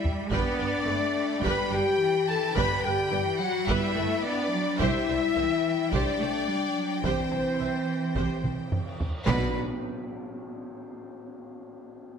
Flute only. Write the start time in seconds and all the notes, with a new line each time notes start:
0.31 D5
1.45 B5
1.72 G5
2.28 A5
2.56 B5
2.84 G5
3.41 F#5
3.67 E5
4.25 D5
4.79 E5
5.92 D5
7.04 C5
9.27 B5